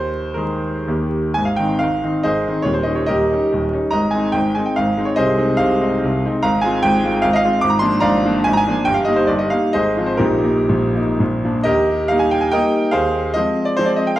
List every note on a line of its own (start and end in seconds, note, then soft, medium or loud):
0.00 0.34 D#2 medium
0.00 0.34 C5 medium
0.34 0.83 D#3 soft
0.34 0.83 G#3 soft
0.34 0.83 G#4 soft
0.34 0.86 A#4 medium
0.87 1.34 D#2 medium
0.87 1.31 D#3 soft
0.87 1.31 A#3 soft
0.87 1.32 G4 soft
1.34 1.58 G#1 soft
1.34 1.58 G#2 medium
1.34 1.46 G#5 medium
1.45 1.57 F5 medium
1.56 1.79 D#3 soft
1.56 1.80 C4 soft
1.56 1.79 D#4 soft
1.56 1.81 G5 medium
1.79 2.03 G#1 medium
1.79 2.03 G#2 soft
1.79 2.24 F5 medium
2.04 2.23 D#3 soft
2.04 2.23 C4 soft
2.04 2.23 D#4 soft
2.23 2.45 G#1 medium
2.23 2.45 G#2 medium
2.23 2.63 G#4 medium
2.23 2.63 C5 medium
2.23 2.65 D#5 medium
2.47 2.65 D#3 soft
2.47 2.65 C4 soft
2.47 2.65 D#4 soft
2.62 2.86 D#1 soft
2.62 2.85 D#2 medium
2.62 2.74 C#5 medium
2.74 2.85 C5 medium
2.83 3.06 G3 soft
2.83 3.07 C#4 soft
2.83 3.07 D#4 medium
2.83 2.96 D#5 medium
2.95 3.08 C#5 medium
3.06 3.31 D#1 medium
3.06 3.31 D#2 medium
3.06 3.69 G4 medium
3.06 3.69 A#4 medium
3.06 3.72 D#5 medium
3.31 3.50 G3 soft
3.31 3.51 C#4 soft
3.31 3.51 D#4 soft
3.52 3.73 D#1 medium
3.52 3.72 D#2 soft
3.72 3.91 G3 soft
3.72 3.91 C#4 soft
3.72 3.91 D#4 soft
3.91 4.12 G#1 medium
3.91 4.12 G#2 medium
3.91 4.11 D#5 medium
3.91 4.12 A#5 medium
4.11 4.33 G#3 soft
4.11 4.33 C4 soft
4.11 4.33 D#4 soft
4.11 4.34 G#5 medium
4.32 4.56 G#1 medium
4.32 4.56 G#2 medium
4.32 4.56 G5 medium
4.55 4.75 G#3 soft
4.55 4.76 C4 soft
4.55 4.76 D#4 medium
4.55 4.66 G#5 medium
4.66 4.77 G5 medium
4.76 4.97 G#1 medium
4.76 4.98 G#2 medium
4.76 5.07 F5 medium
4.98 5.15 G#3 soft
4.98 5.16 C4 soft
4.98 5.16 D#4 medium
5.05 5.16 C#5 medium
5.16 5.38 C2 medium
5.16 5.37 C3 medium
5.16 5.56 G#4 medium
5.16 5.56 C5 medium
5.16 5.58 D#5 medium
5.37 5.57 G#3 soft
5.37 5.57 C4 soft
5.37 5.57 D#4 medium
5.57 5.80 C2 medium
5.57 5.81 C3 medium
5.57 6.23 F5 loud
5.81 6.00 G#3 medium
5.81 6.01 C4 medium
5.81 6.01 D#4 medium
6.03 6.23 C2 medium
6.03 6.24 C3 medium
6.25 6.42 G#3 medium
6.25 6.43 C4 medium
6.25 6.43 D#4 medium
6.43 6.63 G#1 medium
6.43 6.63 G#2 medium
6.43 6.61 F5 medium
6.43 6.62 A#5 loud
6.61 6.82 G#3 medium
6.61 6.82 C4 medium
6.61 6.83 F4 medium
6.61 6.83 G#5 medium
6.83 7.04 G#1 medium
6.83 7.04 G#2 medium
6.83 7.25 G5 loud
7.04 7.23 G#3 medium
7.04 7.23 C4 medium
7.04 7.23 F4 medium
7.22 7.44 G#1 medium
7.22 7.44 G#2 medium
7.22 7.30 F5 loud
7.33 7.39 D#5 medium
7.33 7.63 F5 loud
7.45 7.62 G#3 medium
7.45 7.62 C4 medium
7.45 7.62 F4 medium
7.61 7.82 G#1 medium
7.61 7.82 G#2 medium
7.61 7.72 D6 loud
7.70 7.81 A#5 medium
7.79 8.01 F3 medium
7.79 8.01 A#3 medium
7.79 8.01 D4 medium
7.79 8.02 C6 loud
8.00 8.24 G#1 medium
8.00 8.24 G#2 medium
8.00 8.43 D5 medium
8.00 8.43 F5 medium
8.00 8.45 A#5 loud
8.25 8.45 F3 medium
8.25 8.45 A#3 medium
8.25 8.45 D4 medium
8.44 8.67 G#1 medium
8.44 8.67 G#2 medium
8.44 8.52 G#5 loud
8.53 8.60 A#5 loud
8.57 8.86 G#5 loud
8.68 8.86 F3 medium
8.68 8.86 A#3 medium
8.68 8.86 D4 medium
8.85 9.07 G1 medium
8.85 9.07 G2 medium
8.85 8.96 G5 loud
8.94 9.06 F5 medium
9.05 9.27 G3 medium
9.05 9.27 A#3 medium
9.05 9.27 D#4 medium
9.05 9.17 D#5 medium
9.16 9.28 C5 medium
9.27 9.50 G1 medium
9.27 9.51 G2 medium
9.27 9.39 D5 medium
9.39 9.51 D#5 medium
9.50 9.72 G3 soft
9.50 9.73 A#3 medium
9.50 9.73 D#4 medium
9.50 9.73 F5 medium
9.73 9.97 G#1 medium
9.73 9.97 G#2 medium
9.73 10.06 G#4 medium
9.73 10.05 C5 medium
9.73 10.08 D#5 medium
9.97 10.18 F3 soft
9.97 10.18 C4 soft
9.97 10.18 F4 soft
10.06 10.19 C5 medium
10.17 10.43 A#1 medium
10.17 10.43 A#2 medium
10.17 10.42 D#4 medium
10.17 11.14 G4 medium
10.17 11.18 A#4 medium
10.44 10.66 G3 soft
10.44 10.67 A#3 soft
10.44 10.66 D#4 soft
10.69 10.94 A#1 medium
10.69 10.94 A#2 medium
10.94 11.17 G3 soft
10.94 11.17 A#3 soft
10.94 11.18 D#4 soft
11.20 11.43 A#1 medium
11.20 11.43 A#2 medium
11.45 11.65 F3 soft
11.45 11.65 A#3 soft
11.45 11.65 D4 soft
11.64 12.09 D#2 medium
11.64 12.07 G4 medium
11.64 12.07 A#4 medium
11.64 12.09 D#5 loud
12.08 12.50 G3 soft
12.08 12.50 A#3 medium
12.08 12.50 D#4 medium
12.08 12.21 F5 loud
12.19 12.32 G#5 medium
12.31 12.43 G5 medium
12.41 12.52 G#5 medium
12.52 12.90 G3 medium
12.52 12.90 A#3 medium
12.52 12.90 D#4 medium
12.52 12.90 A#4 medium
12.52 12.90 D#5 medium
12.52 12.93 G5 loud
12.91 13.35 D#2 medium
12.91 13.33 G#4 medium
12.91 13.33 C5 medium
12.91 13.35 F5 medium
13.34 13.74 F3 soft
13.34 13.75 G#3 medium
13.34 13.75 C4 medium
13.34 13.67 D#5 medium
13.65 13.77 D5 medium
13.77 14.15 F3 medium
13.77 14.15 G#3 medium
13.77 14.15 C4 medium
13.77 13.88 C5 loud
13.86 13.97 D5 medium
13.96 14.08 D#5 medium
14.07 14.18 G5 medium
14.16 14.19 F5 loud